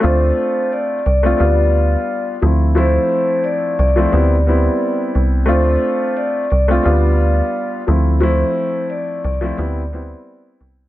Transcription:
X:1
M:4/4
L:1/16
Q:"Swing 16ths" 1/4=88
K:Ddor
V:1 name="Vibraphone"
c4 d2 d6- d z3 | c4 d2 d6- d z3 | c4 d2 d6- d z3 | c4 d2 d6- d z3 |]
V:2 name="Grand piano"
[A,CDF]6 z [A,CDF] [G,B,DF]6 [F,A,CE]2 | [F,A,CE]6 z [F,A,CE] [G,B,CE] z [G,B,CE]6 | [A,CDF]6 z [A,CDF] [G,B,DF]6 [F,A,CE]2 | [F,A,CE]6 z [F,A,CE] [G,B,CE] z [G,B,CE]6 |]
V:3 name="FM bass" clef=bass
D,,2 z4 C,,2 D,,4 z2 D,,2- | D,,2 z4 C,,2 D,,4 z2 C,,2 | D,,2 z4 C,,2 D,,4 z2 D,,2- | D,,2 z4 C,,2 D,,4 z2 C,,2 |]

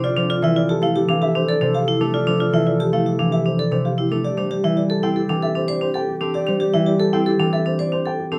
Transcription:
X:1
M:4/4
L:1/16
Q:1/4=114
K:F
V:1 name="Grand piano"
d c d e d A f G f e c d c f G A | d c d e d A f G f e c d c f G A | d c d e d A g G g e c d c g G A | d c d e d A g G g e c d c g G A |]
V:2 name="Alto flute"
A16- | A12- A3 z | G16- | G12- G3 z |]
V:3 name="Vibraphone"
F D F E F G E G D G D A D G E D | F D F E F G E G D G D A D G E D | G D G E G A E A D A D c D A z D | G D G E G A E A D A D c D A z D |]
V:4 name="Harp" clef=bass
[F,C] F,2 E,3 A,2 E,4 C,3 A,- | A, F,2 E,3 A,2 E,4 C,3 A,- | A, G,2 E,3 C2 E,6- E, C- | C G,2 E,3 C2 E,6- E, C |]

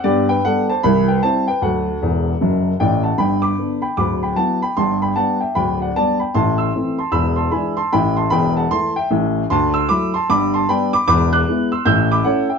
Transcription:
X:1
M:4/4
L:1/8
Q:"Swing" 1/4=152
K:G
V:1 name="Upright piano"
[Gd] [Bg] [Af] [ca] [eb] [Bg] [ca] [Bg] | [Af]6 [dg] [fa] | [gb] [bd']2 [gb] [bd'] [gb] [fa] [gb] | [ac'] [gb] [fa] [eg] [gb] [df] [da] [gb] |
[ac'] [c'e']2 [ac'] [be'] [ac'] [^gb] [ac'] | [gb] [ac'] [gb] [fa] [ac'] [eg] z2 | [ac'] [c'e'] [bd'] [ac'] [bd'] [ac'] [gb] [bd'] | [bd'] [d'f']2 [c'e'] [e'g'] [bd'] [^cf] [eg] |]
V:2 name="Upright piano" clef=bass
[G,,B,]2 [G,B,D]2 [C,,E,]2 [G,CE]2 | [D,,F,]2 [E,,,E,,]2 [F,,,F,,]2 [A,,,A,,]2 | [G,,,G,,]2 [D,B,D]2 [D,,,D,,]2 [F,B,E]2 | [G,,,G,,]2 [G,B,D]2 [D,,,D,,]2 [G,B,D]2 |
[A,,,A,,]2 [E,A,C]2 [E,,,E,,]2 [E,^G,D]2 | [A,,,A,,]2 [E,,,E,,]2 [E,A,E]2 [A,,,A,,]2 | [D,,D,]2 [F,A,E]2 [G,,,G,,]2 [G,B,D]2 | [E,,,E,,]2 [^G,B,E]2 [A,,,A,,]2 [A,^CE]2 |]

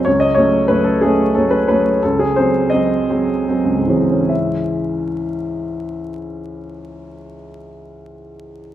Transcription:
X:1
M:3/4
L:1/16
Q:1/4=80
K:C#m
V:1 name="Upright piano"
c d c2 B A G2 A B B2 | A G ^B2 d8 | [C,,G,,E,G,CEe]12- | [C,,G,,E,G,CEe]12 |]
V:2 name="Upright piano" clef=bass
C,,2 [F,A,C]2 [F,A,C]2 [F,A,C]2 [F,A,C]2 [F,A,C]2 | C,,2 [F,G,^B,]2 [F,G,B,]2 [F,G,B,]2 [F,G,B,]2 [F,G,B,]2 | z12 | z12 |]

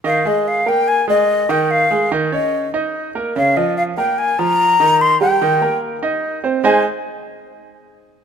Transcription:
X:1
M:4/4
L:1/8
Q:1/4=146
K:Ab
V:1 name="Flute"
f e f g a e2 g | f2 z e2 z3 | f e f g a b3 | c' g3 z4 |
a z6 z |]
V:2 name="Grand piano"
[E,E] [A,A]2 [B,B]2 [A,A]2 [E,E]- | [E,E] [A,A] [E,E] [Dd]2 [Ee]2 [B,B] | [D,D] [F,F]2 [B,B]2 [F,F]2 [E,E]- | [E,E] [G,G] [E,E] [B,B]2 [Ee]2 [Cc] |
[A,EAcea] z6 z |]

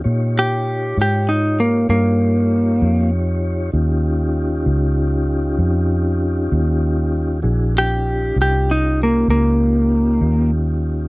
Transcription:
X:1
M:12/8
L:1/8
Q:3/8=65
K:Ebmix
V:1 name="Tonewheel organ"
[EFGd]12 | [DEFG]12 | [=D_F_GA] [_DE=F=G]8- [DEFG]3 |]
V:2 name="Electric slide guitar"
z G2 G E B, B,4 z2 | z12 | z G2 G E B, B,4 z2 |]
V:3 name="Fingered electric bass" clef=bass
B,,3 A,,3 G,,3 F,,3 | E,,3 D,,3 F,,3 E,,3 | B,,,3 C,,3 D,,3 E,,3 |]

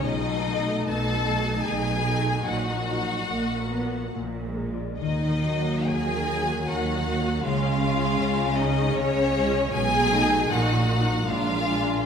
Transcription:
X:1
M:3/4
L:1/8
Q:1/4=75
K:Ebm
V:1 name="Violin section"
^d2 =a2 _a2 | g4 z2 | e2 a2 g2 | f3 e d2 |
a2 g2 f2 |]
V:2 name="Harp"
(3=B,, =A, =A (3=B A =a (3A B A | (3B,, B, G (3e B g (3B,, B, [F=d] | (3E, B, G (3e B g (3B e G | (3D, D F (3A d f (3d A F |
(3=B,, =A, [^D=A] (3_B,, G, [EB] (3B,, _A, [=DB] |]
V:3 name="Violin section"
^D2 =A2 _A2 | G4 z2 | E2 A2 G2 | F3 E D2 |
A2 G2 F2 |]
V:4 name="Viola section"
z [=A,^D]2 [A,D]2 [A,D] | [G,E] [G,E] B, C B, A, | z [G,B,]2 [G,B,]2 [G,B,] | [A,D] [A,D]2 [A,D]2 [A,D] |
z [=A,^D] [B,E] [B,E] [_A,=D] [A,D] |]
V:5 name="Cello section" clef=bass
=B,,2 B,,2 B,,2 | B,,2 B,,2 B,,2 | E,2 E,2 E,2 | D,2 D,2 D,2 |
=B,,2 _B,,2 B,,2 |]
V:6 name="Double bass section" clef=bass
=B,,,2 B,,,2 B,,,2 | B,,,2 B,,,2 B,,,2 | E,,2 E,,2 E,,2 | D,,2 D,,2 D,,2 |
=B,,,2 _B,,,2 B,,,2 |]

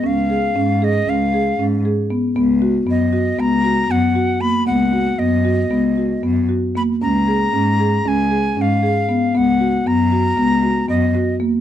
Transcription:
X:1
M:9/8
L:1/8
Q:3/8=77
K:Cblyd
V:1 name="Flute"
f3 e f2 z3 | z2 e2 b2 g2 c' | g2 e4 z2 c' | b4 a2 f3 |
g2 b4 e2 z |]
V:2 name="Marimba"
D A D A D A D A C | C G C G C G C G B, | C G C G C G C G B, | D A D A D A D A C |
C G C G C G C G B, |]
V:3 name="Cello" clef=bass
D,,2 A,,2 D,,2 A,, z2 | D,,2 G,,2 D,,2 G,, z2 | D,,2 G,,2 D,,2 G,, z2 | D,,2 A,,2 D,,2 A,, z2 |
D,,2 G,,2 D,,2 G,, z2 |]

